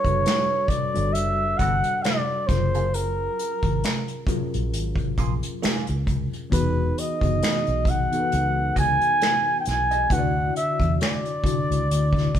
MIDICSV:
0, 0, Header, 1, 7, 480
1, 0, Start_track
1, 0, Tempo, 895522
1, 1573, Time_signature, 4, 2, 24, 8
1, 6643, End_track
2, 0, Start_track
2, 0, Title_t, "Flugelhorn"
2, 0, Program_c, 0, 56
2, 0, Note_on_c, 0, 73, 93
2, 368, Note_on_c, 0, 74, 89
2, 376, Note_off_c, 0, 73, 0
2, 606, Note_on_c, 0, 76, 99
2, 614, Note_off_c, 0, 74, 0
2, 845, Note_on_c, 0, 78, 106
2, 853, Note_off_c, 0, 76, 0
2, 1087, Note_on_c, 0, 74, 86
2, 1095, Note_off_c, 0, 78, 0
2, 1325, Note_on_c, 0, 72, 89
2, 1333, Note_off_c, 0, 74, 0
2, 1579, Note_on_c, 0, 70, 80
2, 1587, Note_off_c, 0, 72, 0
2, 2296, Note_off_c, 0, 70, 0
2, 3501, Note_on_c, 0, 71, 85
2, 3747, Note_on_c, 0, 75, 91
2, 3755, Note_off_c, 0, 71, 0
2, 4231, Note_on_c, 0, 78, 98
2, 4239, Note_off_c, 0, 75, 0
2, 4702, Note_off_c, 0, 78, 0
2, 4712, Note_on_c, 0, 80, 106
2, 5127, Note_off_c, 0, 80, 0
2, 5146, Note_on_c, 0, 79, 64
2, 5185, Note_on_c, 0, 80, 90
2, 5193, Note_off_c, 0, 79, 0
2, 5425, Note_on_c, 0, 78, 95
2, 5433, Note_off_c, 0, 80, 0
2, 5659, Note_off_c, 0, 78, 0
2, 5663, Note_on_c, 0, 76, 88
2, 5881, Note_off_c, 0, 76, 0
2, 5907, Note_on_c, 0, 74, 82
2, 6643, Note_off_c, 0, 74, 0
2, 6643, End_track
3, 0, Start_track
3, 0, Title_t, "Hollow-body jazz guitar"
3, 0, Program_c, 1, 26
3, 861, Note_on_c, 1, 59, 62
3, 865, Note_on_c, 1, 66, 58
3, 869, Note_on_c, 1, 69, 60
3, 928, Note_off_c, 1, 59, 0
3, 930, Note_off_c, 1, 66, 0
3, 932, Note_off_c, 1, 69, 0
3, 1474, Note_on_c, 1, 68, 52
3, 1478, Note_on_c, 1, 65, 50
3, 1482, Note_on_c, 1, 58, 41
3, 1527, Note_off_c, 1, 68, 0
3, 1529, Note_off_c, 1, 65, 0
3, 1531, Note_off_c, 1, 58, 0
3, 2778, Note_on_c, 1, 58, 55
3, 2783, Note_on_c, 1, 65, 52
3, 2786, Note_on_c, 1, 68, 61
3, 2846, Note_off_c, 1, 58, 0
3, 2849, Note_off_c, 1, 65, 0
3, 2850, Note_off_c, 1, 68, 0
3, 3015, Note_on_c, 1, 58, 84
3, 3018, Note_on_c, 1, 65, 86
3, 3023, Note_on_c, 1, 68, 84
3, 3132, Note_off_c, 1, 58, 0
3, 3134, Note_off_c, 1, 65, 0
3, 3137, Note_off_c, 1, 68, 0
3, 4695, Note_on_c, 1, 66, 48
3, 4699, Note_on_c, 1, 68, 59
3, 4706, Note_on_c, 1, 75, 51
3, 4765, Note_off_c, 1, 66, 0
3, 4767, Note_off_c, 1, 68, 0
3, 4770, Note_off_c, 1, 75, 0
3, 5312, Note_on_c, 1, 75, 49
3, 5318, Note_on_c, 1, 68, 51
3, 5320, Note_on_c, 1, 66, 42
3, 5366, Note_off_c, 1, 75, 0
3, 5369, Note_off_c, 1, 68, 0
3, 5370, Note_off_c, 1, 66, 0
3, 6643, End_track
4, 0, Start_track
4, 0, Title_t, "Tine electric piano"
4, 0, Program_c, 2, 4
4, 0, Control_c, 2, 64, 127
4, 0, Note_on_c, 2, 55, 75
4, 0, Note_on_c, 2, 62, 64
4, 0, Note_on_c, 2, 66, 67
4, 0, Note_on_c, 2, 69, 65
4, 0, Note_on_c, 2, 71, 82
4, 28, Note_off_c, 2, 55, 0
4, 28, Note_on_c, 2, 55, 57
4, 32, Note_off_c, 2, 62, 0
4, 32, Note_on_c, 2, 62, 51
4, 33, Note_off_c, 2, 66, 0
4, 33, Note_on_c, 2, 66, 53
4, 34, Note_off_c, 2, 69, 0
4, 34, Note_on_c, 2, 69, 53
4, 39, Note_off_c, 2, 71, 0
4, 39, Note_on_c, 2, 71, 61
4, 459, Note_off_c, 2, 55, 0
4, 462, Note_off_c, 2, 62, 0
4, 462, Note_off_c, 2, 66, 0
4, 462, Note_off_c, 2, 69, 0
4, 465, Note_off_c, 2, 71, 0
4, 502, Note_on_c, 2, 55, 65
4, 503, Note_on_c, 2, 62, 55
4, 506, Note_on_c, 2, 66, 59
4, 508, Note_on_c, 2, 69, 56
4, 512, Note_on_c, 2, 73, 58
4, 540, Note_off_c, 2, 73, 0
4, 544, Note_on_c, 2, 74, 68
4, 1331, Note_off_c, 2, 55, 0
4, 1331, Note_on_c, 2, 54, 66
4, 1332, Note_off_c, 2, 62, 0
4, 1333, Note_off_c, 2, 66, 0
4, 1334, Note_off_c, 2, 69, 0
4, 1334, Note_on_c, 2, 61, 55
4, 1336, Note_on_c, 2, 65, 58
4, 1339, Control_c, 2, 64, 0
4, 1339, Note_on_c, 2, 68, 60
4, 1341, Note_on_c, 2, 70, 69
4, 1352, Note_off_c, 2, 74, 0
4, 1418, Control_c, 2, 64, 127
4, 2215, Note_off_c, 2, 54, 0
4, 2217, Note_off_c, 2, 61, 0
4, 2218, Note_off_c, 2, 65, 0
4, 2219, Note_off_c, 2, 68, 0
4, 2220, Note_off_c, 2, 70, 0
4, 2290, Note_on_c, 2, 54, 71
4, 2293, Note_on_c, 2, 61, 69
4, 2297, Note_on_c, 2, 65, 67
4, 2299, Note_on_c, 2, 68, 65
4, 2300, Note_on_c, 2, 70, 87
4, 3175, Note_off_c, 2, 54, 0
4, 3176, Note_off_c, 2, 61, 0
4, 3178, Note_off_c, 2, 65, 0
4, 3179, Note_off_c, 2, 68, 0
4, 3180, Note_off_c, 2, 70, 0
4, 3484, Note_on_c, 2, 52, 80
4, 3489, Note_on_c, 2, 59, 72
4, 3492, Note_on_c, 2, 63, 74
4, 3493, Note_on_c, 2, 66, 76
4, 3498, Note_on_c, 2, 68, 81
4, 3500, Control_c, 2, 64, 0
4, 3583, Control_c, 2, 64, 127
4, 3825, Note_off_c, 2, 52, 0
4, 3828, Note_off_c, 2, 59, 0
4, 3830, Note_off_c, 2, 63, 0
4, 3830, Note_off_c, 2, 66, 0
4, 3832, Note_off_c, 2, 68, 0
4, 3861, Note_on_c, 2, 52, 60
4, 3865, Note_on_c, 2, 59, 56
4, 3870, Note_on_c, 2, 63, 53
4, 3871, Note_on_c, 2, 66, 49
4, 3871, Note_on_c, 2, 68, 61
4, 4296, Note_off_c, 2, 52, 0
4, 4298, Note_off_c, 2, 59, 0
4, 4300, Note_off_c, 2, 63, 0
4, 4301, Note_off_c, 2, 66, 0
4, 4301, Note_off_c, 2, 68, 0
4, 4349, Note_on_c, 2, 52, 57
4, 4353, Note_on_c, 2, 59, 56
4, 4353, Note_on_c, 2, 63, 55
4, 4358, Note_on_c, 2, 66, 62
4, 4361, Note_on_c, 2, 69, 58
4, 4384, Note_off_c, 2, 69, 0
4, 4395, Note_on_c, 2, 71, 71
4, 5212, Note_off_c, 2, 52, 0
4, 5214, Note_off_c, 2, 59, 0
4, 5215, Note_off_c, 2, 63, 0
4, 5217, Note_off_c, 2, 66, 0
4, 5235, Note_off_c, 2, 71, 0
4, 5417, Note_on_c, 2, 50, 79
4, 5420, Note_on_c, 2, 62, 74
4, 5421, Control_c, 2, 64, 0
4, 5422, Note_on_c, 2, 64, 69
4, 5425, Note_on_c, 2, 66, 78
4, 5425, Note_on_c, 2, 71, 73
4, 5458, Note_off_c, 2, 71, 0
4, 5461, Note_on_c, 2, 74, 94
4, 5512, Control_c, 2, 64, 127
4, 6078, Note_off_c, 2, 50, 0
4, 6079, Note_off_c, 2, 62, 0
4, 6080, Note_off_c, 2, 64, 0
4, 6082, Note_off_c, 2, 66, 0
4, 6100, Note_off_c, 2, 74, 0
4, 6129, Note_on_c, 2, 50, 67
4, 6132, Note_on_c, 2, 62, 59
4, 6136, Note_on_c, 2, 64, 60
4, 6137, Note_on_c, 2, 66, 67
4, 6140, Note_on_c, 2, 74, 70
4, 6643, Note_off_c, 2, 50, 0
4, 6643, Note_off_c, 2, 62, 0
4, 6643, Note_off_c, 2, 64, 0
4, 6643, Note_off_c, 2, 66, 0
4, 6643, Note_off_c, 2, 74, 0
4, 6643, End_track
5, 0, Start_track
5, 0, Title_t, "Fingered electric bass"
5, 0, Program_c, 3, 33
5, 30, Note_on_c, 3, 30, 73
5, 121, Note_off_c, 3, 30, 0
5, 518, Note_on_c, 3, 31, 72
5, 625, Note_off_c, 3, 31, 0
5, 625, Note_on_c, 3, 30, 78
5, 827, Note_off_c, 3, 30, 0
5, 859, Note_on_c, 3, 31, 78
5, 971, Note_off_c, 3, 31, 0
5, 1338, Note_on_c, 3, 30, 78
5, 1751, Note_off_c, 3, 30, 0
5, 1951, Note_on_c, 3, 32, 66
5, 2041, Note_off_c, 3, 32, 0
5, 2438, Note_on_c, 3, 34, 75
5, 2541, Note_off_c, 3, 34, 0
5, 2541, Note_on_c, 3, 32, 91
5, 2745, Note_off_c, 3, 32, 0
5, 2781, Note_on_c, 3, 34, 88
5, 2892, Note_off_c, 3, 34, 0
5, 3159, Note_on_c, 3, 37, 68
5, 3361, Note_off_c, 3, 37, 0
5, 3499, Note_on_c, 3, 28, 94
5, 3704, Note_off_c, 3, 28, 0
5, 3872, Note_on_c, 3, 30, 69
5, 3962, Note_off_c, 3, 30, 0
5, 4116, Note_on_c, 3, 35, 75
5, 4319, Note_off_c, 3, 35, 0
5, 4466, Note_on_c, 3, 37, 93
5, 4668, Note_off_c, 3, 37, 0
5, 4702, Note_on_c, 3, 37, 82
5, 4813, Note_off_c, 3, 37, 0
5, 5185, Note_on_c, 3, 35, 71
5, 5387, Note_off_c, 3, 35, 0
5, 5419, Note_on_c, 3, 38, 97
5, 5624, Note_off_c, 3, 38, 0
5, 5791, Note_on_c, 3, 40, 74
5, 5881, Note_off_c, 3, 40, 0
5, 6276, Note_on_c, 3, 37, 86
5, 6364, Note_off_c, 3, 37, 0
5, 6383, Note_on_c, 3, 38, 75
5, 6586, Note_off_c, 3, 38, 0
5, 6623, Note_on_c, 3, 38, 89
5, 6643, Note_off_c, 3, 38, 0
5, 6643, End_track
6, 0, Start_track
6, 0, Title_t, "Muted fingered electric bass strokes"
6, 369, Note_on_c, 9, 29, 45
6, 422, Note_off_c, 9, 29, 0
6, 2292, Note_on_c, 9, 29, 39
6, 2346, Note_off_c, 9, 29, 0
6, 3026, Note_on_c, 9, 29, 41
6, 3080, Note_off_c, 9, 29, 0
6, 3985, Note_on_c, 9, 29, 41
6, 4039, Note_off_c, 9, 29, 0
6, 6134, Note_on_c, 9, 29, 43
6, 6188, Note_off_c, 9, 29, 0
6, 6643, End_track
7, 0, Start_track
7, 0, Title_t, "Drums"
7, 24, Note_on_c, 9, 36, 77
7, 30, Note_on_c, 9, 42, 41
7, 78, Note_off_c, 9, 36, 0
7, 83, Note_off_c, 9, 42, 0
7, 138, Note_on_c, 9, 42, 70
7, 143, Note_on_c, 9, 38, 103
7, 148, Note_on_c, 9, 26, 81
7, 192, Note_off_c, 9, 42, 0
7, 197, Note_off_c, 9, 38, 0
7, 202, Note_off_c, 9, 26, 0
7, 366, Note_on_c, 9, 36, 84
7, 375, Note_on_c, 9, 42, 58
7, 420, Note_off_c, 9, 36, 0
7, 428, Note_off_c, 9, 42, 0
7, 511, Note_on_c, 9, 42, 44
7, 565, Note_off_c, 9, 42, 0
7, 616, Note_on_c, 9, 42, 64
7, 669, Note_off_c, 9, 42, 0
7, 853, Note_on_c, 9, 42, 62
7, 854, Note_on_c, 9, 36, 79
7, 907, Note_off_c, 9, 36, 0
7, 907, Note_off_c, 9, 42, 0
7, 985, Note_on_c, 9, 42, 42
7, 1038, Note_off_c, 9, 42, 0
7, 1096, Note_on_c, 9, 42, 70
7, 1101, Note_on_c, 9, 38, 106
7, 1106, Note_on_c, 9, 26, 86
7, 1149, Note_off_c, 9, 42, 0
7, 1154, Note_off_c, 9, 38, 0
7, 1159, Note_off_c, 9, 26, 0
7, 1333, Note_on_c, 9, 36, 94
7, 1336, Note_on_c, 9, 42, 58
7, 1347, Note_on_c, 9, 38, 31
7, 1387, Note_off_c, 9, 36, 0
7, 1389, Note_off_c, 9, 42, 0
7, 1400, Note_off_c, 9, 38, 0
7, 1471, Note_on_c, 9, 42, 34
7, 1525, Note_off_c, 9, 42, 0
7, 1576, Note_on_c, 9, 42, 66
7, 1629, Note_off_c, 9, 42, 0
7, 1818, Note_on_c, 9, 42, 58
7, 1872, Note_off_c, 9, 42, 0
7, 1945, Note_on_c, 9, 36, 84
7, 1949, Note_on_c, 9, 42, 37
7, 1998, Note_off_c, 9, 36, 0
7, 2002, Note_off_c, 9, 42, 0
7, 2057, Note_on_c, 9, 42, 72
7, 2061, Note_on_c, 9, 38, 107
7, 2067, Note_on_c, 9, 26, 75
7, 2110, Note_off_c, 9, 42, 0
7, 2115, Note_off_c, 9, 38, 0
7, 2120, Note_off_c, 9, 26, 0
7, 2187, Note_on_c, 9, 42, 29
7, 2240, Note_off_c, 9, 42, 0
7, 2287, Note_on_c, 9, 36, 89
7, 2295, Note_on_c, 9, 42, 60
7, 2340, Note_off_c, 9, 36, 0
7, 2348, Note_off_c, 9, 42, 0
7, 2433, Note_on_c, 9, 42, 46
7, 2486, Note_off_c, 9, 42, 0
7, 2538, Note_on_c, 9, 42, 57
7, 2592, Note_off_c, 9, 42, 0
7, 2656, Note_on_c, 9, 36, 79
7, 2669, Note_on_c, 9, 42, 30
7, 2710, Note_off_c, 9, 36, 0
7, 2723, Note_off_c, 9, 42, 0
7, 2775, Note_on_c, 9, 36, 78
7, 2776, Note_on_c, 9, 42, 58
7, 2829, Note_off_c, 9, 36, 0
7, 2830, Note_off_c, 9, 42, 0
7, 2910, Note_on_c, 9, 42, 44
7, 2963, Note_off_c, 9, 42, 0
7, 3019, Note_on_c, 9, 42, 73
7, 3024, Note_on_c, 9, 38, 102
7, 3029, Note_on_c, 9, 26, 77
7, 3073, Note_off_c, 9, 42, 0
7, 3077, Note_off_c, 9, 38, 0
7, 3083, Note_off_c, 9, 26, 0
7, 3146, Note_on_c, 9, 42, 32
7, 3199, Note_off_c, 9, 42, 0
7, 3254, Note_on_c, 9, 36, 79
7, 3256, Note_on_c, 9, 42, 54
7, 3308, Note_off_c, 9, 36, 0
7, 3310, Note_off_c, 9, 42, 0
7, 3394, Note_on_c, 9, 42, 34
7, 3448, Note_off_c, 9, 42, 0
7, 3495, Note_on_c, 9, 36, 93
7, 3498, Note_on_c, 9, 42, 71
7, 3549, Note_off_c, 9, 36, 0
7, 3551, Note_off_c, 9, 42, 0
7, 3741, Note_on_c, 9, 42, 61
7, 3795, Note_off_c, 9, 42, 0
7, 3867, Note_on_c, 9, 36, 83
7, 3874, Note_on_c, 9, 42, 42
7, 3920, Note_off_c, 9, 36, 0
7, 3928, Note_off_c, 9, 42, 0
7, 3980, Note_on_c, 9, 42, 69
7, 3985, Note_on_c, 9, 38, 94
7, 3990, Note_on_c, 9, 26, 87
7, 4033, Note_off_c, 9, 42, 0
7, 4038, Note_off_c, 9, 38, 0
7, 4043, Note_off_c, 9, 26, 0
7, 4109, Note_on_c, 9, 42, 27
7, 4163, Note_off_c, 9, 42, 0
7, 4209, Note_on_c, 9, 36, 83
7, 4217, Note_on_c, 9, 42, 61
7, 4262, Note_off_c, 9, 36, 0
7, 4271, Note_off_c, 9, 42, 0
7, 4355, Note_on_c, 9, 42, 46
7, 4408, Note_off_c, 9, 42, 0
7, 4460, Note_on_c, 9, 42, 60
7, 4513, Note_off_c, 9, 42, 0
7, 4697, Note_on_c, 9, 36, 73
7, 4698, Note_on_c, 9, 42, 58
7, 4750, Note_off_c, 9, 36, 0
7, 4752, Note_off_c, 9, 42, 0
7, 4832, Note_on_c, 9, 42, 47
7, 4885, Note_off_c, 9, 42, 0
7, 4939, Note_on_c, 9, 42, 68
7, 4944, Note_on_c, 9, 38, 98
7, 4949, Note_on_c, 9, 26, 82
7, 4992, Note_off_c, 9, 42, 0
7, 4998, Note_off_c, 9, 38, 0
7, 5003, Note_off_c, 9, 26, 0
7, 5175, Note_on_c, 9, 42, 56
7, 5185, Note_on_c, 9, 38, 31
7, 5228, Note_off_c, 9, 42, 0
7, 5239, Note_off_c, 9, 38, 0
7, 5313, Note_on_c, 9, 42, 37
7, 5366, Note_off_c, 9, 42, 0
7, 5415, Note_on_c, 9, 36, 111
7, 5417, Note_on_c, 9, 42, 70
7, 5468, Note_off_c, 9, 36, 0
7, 5471, Note_off_c, 9, 42, 0
7, 5661, Note_on_c, 9, 42, 53
7, 5715, Note_off_c, 9, 42, 0
7, 5787, Note_on_c, 9, 36, 78
7, 5793, Note_on_c, 9, 42, 44
7, 5840, Note_off_c, 9, 36, 0
7, 5847, Note_off_c, 9, 42, 0
7, 5901, Note_on_c, 9, 42, 72
7, 5905, Note_on_c, 9, 38, 95
7, 5911, Note_on_c, 9, 26, 89
7, 5954, Note_off_c, 9, 42, 0
7, 5959, Note_off_c, 9, 38, 0
7, 5964, Note_off_c, 9, 26, 0
7, 6032, Note_on_c, 9, 42, 30
7, 6086, Note_off_c, 9, 42, 0
7, 6130, Note_on_c, 9, 36, 93
7, 6143, Note_on_c, 9, 42, 67
7, 6184, Note_off_c, 9, 36, 0
7, 6196, Note_off_c, 9, 42, 0
7, 6280, Note_on_c, 9, 42, 49
7, 6333, Note_off_c, 9, 42, 0
7, 6385, Note_on_c, 9, 42, 63
7, 6439, Note_off_c, 9, 42, 0
7, 6500, Note_on_c, 9, 36, 80
7, 6518, Note_on_c, 9, 42, 27
7, 6527, Note_on_c, 9, 38, 31
7, 6553, Note_off_c, 9, 36, 0
7, 6571, Note_off_c, 9, 42, 0
7, 6581, Note_off_c, 9, 38, 0
7, 6618, Note_on_c, 9, 36, 83
7, 6622, Note_on_c, 9, 42, 59
7, 6643, Note_off_c, 9, 36, 0
7, 6643, Note_off_c, 9, 42, 0
7, 6643, End_track
0, 0, End_of_file